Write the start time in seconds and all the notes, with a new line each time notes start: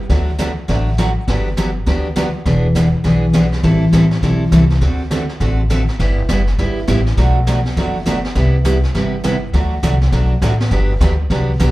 0.10 D2 D3 F#3 A3 D4 F#4, brush sweep, kick, snare
0.38 D3 F#3 A3 D4 F#4, kick, snare, hi-hat pedal
0.68 A1 D3 F#3 A3 D4 F#4, brush sweep, kick, snare
0.98 D3 F#3 A3 D4 F#4, kick, snare, hi-hat pedal
1.28 G1 D3 F#3 B3 D4 G4, brush sweep, kick, snare
1.57 D3 F#3 B3 D4 G4, kick, snare, hi-hat pedal
1.86 D2 D3 F#3 B3 D4 G4, brush sweep, kick, snare
2.16 D3 F#3 B3 D4 G4, kick, snare, hi-hat pedal
2.46 E1 E3 B3 D4 G#4, brush sweep, kick, snare
2.75 E3 B3 D4 G#4, kick, snare, hi-hat pedal
3.04 B1 E3 B3 D4 G#4, brush sweep, kick, snare
3.33 E3 B3 D4 G#4, kick, snare, hi-hat pedal
3.52 snare
3.63 A1 E3 G3 C4 E4 A4, brush sweep, kick, snare
3.93 A1 E3 G3 C4 E4 A4, kick, snare, hi-hat pedal
4.11 snare
4.22 B1 E3 G3 C4 E4 A4, brush sweep, kick, snare
4.52 C2 E3 G3 C4 E4 A4, kick, snare, hi-hat pedal
4.70 snare
4.81 D2 D3 A3 C4 F#4 A4, brush sweep, kick, snare
5.11 D3 A3 C4 F#4 A4, kick, snare, hi-hat pedal
5.29 snare
5.40 A1 D3 A3 C4 F#4 A4, brush sweep, kick, snare
5.70 D3 A3 C4 F#4 A4, kick, snare, hi-hat pedal
5.88 snare
5.99 G1 G3 B3 E4 G4, brush sweep, kick, snare
6.29 F#1 G3 B3 E4 G4, kick, snare, hi-hat pedal
6.47 snare
6.58 G1 G3 B3 E4 G4, brush sweep, kick, snare
6.88 A1 G3 B3 E4 G4, kick, snare, hi-hat pedal
7.06 snare
7.17 B1 B2 F#3 A3 D4 F#4, brush sweep, kick, snare
7.47 B2 F#3 A3 D4 F#4, kick, snare, hi-hat pedal
7.65 snare
7.76 F#1 B2 F#3 A3 D4 F#4, brush sweep, kick, snare
8.06 B2 F#3 A3 D4 F#4, kick, snare, hi-hat pedal
8.24 snare
8.35 C2 C3 G3 B3 E4 G4, brush sweep, kick, snare
8.65 C3 G3 B3 E4 G4, kick, snare, hi-hat pedal
8.83 snare
8.94 G1 C3 G3 B3 E4 G4, brush sweep, kick, snare
9.24 C3 G3 B3 E4 G4, kick, snare, hi-hat pedal
9.53 D2 D3 F#3 A3 D4 F#4, brush sweep, kick, snare
9.83 C2 D3 F#3 A3 D4 F#4, kick, snare, hi-hat pedal
10.01 snare
10.12 B1 D3 F#3 A3 D4 F#4, brush sweep, kick, snare
10.42 A1 D3 F#3 A3 D4 F#4, kick, snare, hi-hat pedal
10.60 snare
10.71 G1 D3 F#3 B3 D4 G4, brush sweep, kick, snare
11.00 D2 D3 F#3 B3 D4 G4, kick, snare, hi-hat pedal
11.30 C2 D3 F#3 B3 D4 G4, brush sweep, kick, snare
11.60 B1 D3 F#3 B3 D4 G4, kick, snare, hi-hat pedal